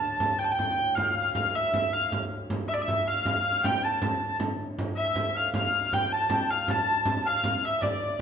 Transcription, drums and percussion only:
0.20 frame drum medium
0.59 frame drum medium
0.97 frame drum medium
1.35 frame drum medium
1.74 frame drum medium
2.12 frame drum medium
2.50 frame drum medium
2.88 frame drum medium
3.25 frame drum medium
3.64 frame drum medium
4.02 frame drum medium
4.40 frame drum medium
4.79 frame drum medium
5.15 frame drum medium
5.54 frame drum medium
5.93 frame drum medium
6.30 frame drum medium
6.68 frame drum medium
7.05 frame drum medium
7.44 frame drum medium
7.82 frame drum medium
8.01 frame drum soft

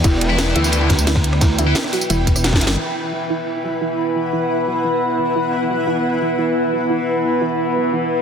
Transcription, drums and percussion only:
0.04 kick loud
0.04 closed hi-hat medium
0.04 ride loud
0.04 tambourine medium
0.21 closed hi-hat loud
0.21 ride medium
0.30 ride soft
0.38 snare loud
0.38 closed hi-hat medium
0.38 ride medium
0.38 tambourine medium
0.56 closed hi-hat loud
0.56 ride medium
0.64 snare soft
0.64 tambourine medium
0.72 closed hi-hat medium
0.72 ride medium
0.72 tambourine medium
0.81 ride soft
0.89 kick medium
0.89 snare soft
0.89 snare loud
0.89 closed hi-hat loud
0.89 ride medium
0.99 tambourine medium
1.07 snare loud
1.07 closed hi-hat medium
1.07 ride medium
1.07 tambourine medium
1.15 kick loud
1.15 cross-stick soft
1.15 snare loud
1.15 ride medium
1.24 closed hi-hat loud
1.33 cross-stick soft
1.33 ride medium
1.41 kick loud
1.41 snare loud
1.41 closed hi-hat medium
1.41 ride medium
1.41 tambourine medium
1.58 closed hi-hat loud
1.58 ride medium
1.58 tambourine soft
1.75 snare loud
1.75 closed hi-hat medium
1.75 ride medium
1.75 tambourine medium
1.84 cross-stick soft
1.84 snare soft
1.93 open hi-hat medium
1.93 ride medium
1.93 tambourine soft
2.01 tambourine medium
2.10 closed hi-hat medium
2.10 ride medium
2.10 tambourine medium
2.27 kick medium
2.27 closed hi-hat loud
2.27 ride medium
2.27 tambourine soft
2.36 cross-stick soft
2.36 tambourine medium
2.44 snare loud
2.44 snare medium
2.44 closed hi-hat medium
2.44 ride medium
2.44 tambourine medium
2.53 kick loud
2.53 snare loud
2.53 ride medium
2.56 snare medium
2.61 snare loud
2.61 closed hi-hat loud
2.61 ride medium
2.67 snare loud
2.67 tambourine soft
2.78 crash medium

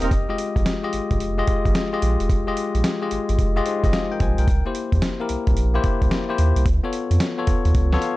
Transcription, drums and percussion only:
0.02 closed hi-hat medium
0.11 kick loud
0.11 closed hi-hat medium
0.38 closed hi-hat medium
0.56 kick medium
0.56 closed hi-hat soft
0.66 snare loud
0.66 closed hi-hat medium
0.93 closed hi-hat medium
1.11 kick medium
1.11 closed hi-hat soft
1.20 closed hi-hat medium
1.47 kick medium
1.47 closed hi-hat medium
1.65 kick medium
1.65 closed hi-hat soft
1.75 snare loud
1.75 closed hi-hat medium
2.02 closed hi-hat medium
2.20 closed hi-hat medium
2.29 kick loud
2.29 closed hi-hat medium
2.57 closed hi-hat medium
2.75 closed hi-hat soft
2.84 snare loud
2.84 closed hi-hat medium
3.11 closed hi-hat medium
3.29 closed hi-hat soft
3.39 kick medium
3.39 closed hi-hat medium
3.66 closed hi-hat medium
3.84 kick medium
3.84 closed hi-hat medium
3.93 snare loud
3.93 closed hi-hat medium
4.20 kick loud
4.20 closed hi-hat medium
4.38 closed hi-hat medium
4.48 kick loud
4.48 closed hi-hat medium
4.75 closed hi-hat medium
4.92 kick medium
4.92 closed hi-hat medium
5.02 snare loud
5.02 closed hi-hat medium
5.29 closed hi-hat medium
5.47 kick medium
5.47 closed hi-hat soft
5.57 closed hi-hat medium
5.84 kick medium
5.84 closed hi-hat medium
6.02 kick medium
6.02 closed hi-hat soft
6.11 snare loud
6.11 closed hi-hat medium
6.38 closed hi-hat medium
6.56 closed hi-hat medium
6.66 kick loud
6.66 closed hi-hat medium
6.93 closed hi-hat medium
7.11 closed hi-hat soft
7.20 snare loud
7.20 closed hi-hat medium
7.47 kick medium
7.47 closed hi-hat medium
7.65 closed hi-hat soft
7.75 kick medium
7.75 closed hi-hat medium
7.93 snare medium
8.02 closed hi-hat medium

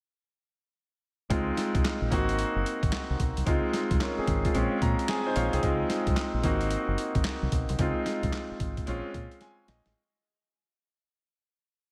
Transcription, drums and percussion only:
1.30 kick loud
1.30 closed hi-hat medium
1.57 snare medium
1.57 closed hi-hat medium
1.75 kick medium
1.75 closed hi-hat medium
1.85 snare loud
1.85 clap medium
1.85 closed hi-hat medium
2.12 kick medium
2.12 closed hi-hat medium
2.29 closed hi-hat medium
2.39 closed hi-hat medium
2.66 closed hi-hat medium
2.83 kick medium
2.83 closed hi-hat soft
2.92 snare loud
2.92 clap loud
2.92 closed hi-hat medium
3.20 kick medium
3.20 closed hi-hat medium
3.37 closed hi-hat medium
3.47 kick loud
3.47 closed hi-hat medium
3.74 snare medium
3.74 closed hi-hat medium
3.91 kick medium
3.91 closed hi-hat medium
4.01 snare loud
4.01 clap medium
4.01 closed hi-hat medium
4.28 kick medium
4.28 closed hi-hat medium
4.45 kick medium
4.45 closed hi-hat medium
4.55 closed hi-hat medium
4.82 kick loud
4.82 closed hi-hat medium
4.99 closed hi-hat soft
5.09 snare loud
5.09 clap loud
5.09 closed hi-hat medium
5.36 closed hi-hat medium
5.53 closed hi-hat medium
5.63 kick loud
5.63 closed hi-hat medium
5.90 snare medium
5.90 closed hi-hat medium
6.07 kick medium
6.07 closed hi-hat medium
6.17 snare loud
6.17 clap medium
6.17 closed hi-hat medium
6.44 kick medium
6.44 closed hi-hat medium
6.61 closed hi-hat medium
6.71 closed hi-hat medium
6.98 closed hi-hat medium
7.15 kick medium
7.15 closed hi-hat soft
7.24 snare loud
7.24 clap medium
7.24 closed hi-hat medium
7.52 kick medium
7.52 closed hi-hat medium
7.69 closed hi-hat medium
7.79 kick loud
7.79 closed hi-hat medium
8.06 snare medium
8.06 closed hi-hat medium
8.23 kick medium
8.23 closed hi-hat medium
8.33 snare loud
8.33 clap medium
8.33 closed hi-hat medium
8.60 kick medium
8.60 closed hi-hat medium
8.77 kick medium
8.77 closed hi-hat medium
8.87 closed hi-hat medium
9.14 kick loud
9.14 closed hi-hat medium
9.31 closed hi-hat medium
9.41 snare medium
9.41 closed hi-hat medium
9.68 snare medium
9.68 closed hi-hat medium
9.86 snare medium
9.86 closed hi-hat medium

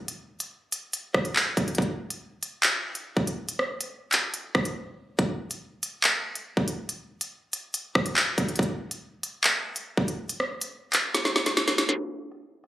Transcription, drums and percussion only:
0.08 closed hi-hat medium
0.40 closed hi-hat medium
0.72 closed hi-hat medium
0.93 closed hi-hat medium
1.14 kick loud
1.14 cross-stick medium
1.25 closed hi-hat medium
1.36 clap loud
1.57 kick loud
1.57 closed hi-hat medium
1.68 closed hi-hat medium
1.75 kick loud
1.75 closed hi-hat medium
1.82 closed hi-hat medium
2.10 closed hi-hat medium
2.43 closed hi-hat medium
2.63 clap loud
2.63 closed hi-hat medium
2.95 closed hi-hat medium
3.17 kick loud
3.27 closed hi-hat medium
3.49 closed hi-hat medium
3.59 cross-stick medium
3.81 closed hi-hat medium
4.12 clap medium
4.12 closed hi-hat medium
4.34 closed hi-hat medium
4.55 kick loud
4.55 cross-stick medium
4.65 closed hi-hat medium
5.19 kick loud
5.19 closed hi-hat medium
5.51 closed hi-hat medium
5.83 closed hi-hat medium
6.04 clap loud
6.04 closed hi-hat medium
6.35 closed hi-hat medium
6.57 kick loud
6.68 closed hi-hat medium
6.89 closed hi-hat medium
7.21 closed hi-hat medium
7.53 closed hi-hat medium
7.74 closed hi-hat medium
7.95 kick loud
7.95 cross-stick medium
8.06 closed hi-hat medium
8.17 clap loud
8.38 kick loud
8.38 closed hi-hat medium
8.48 closed hi-hat medium
8.56 kick loud
8.56 closed hi-hat medium
8.63 closed hi-hat medium
8.91 closed hi-hat medium
9.23 closed hi-hat medium
9.44 clap loud
9.44 closed hi-hat medium
9.76 closed hi-hat medium
9.97 kick loud
10.08 closed hi-hat medium
10.29 closed hi-hat medium
10.40 cross-stick medium
10.61 closed hi-hat medium
10.93 clap medium
10.93 closed hi-hat medium
11.15 snare medium
11.15 closed hi-hat medium
11.25 snare medium
11.36 snare medium
11.46 snare medium
11.46 closed hi-hat medium
11.57 snare loud
11.68 snare medium
11.78 snare loud
11.78 closed hi-hat medium
11.89 snare medium
11.89 closed hi-hat medium
12.00 closed hi-hat medium
12.32 closed hi-hat medium
12.64 closed hi-hat medium

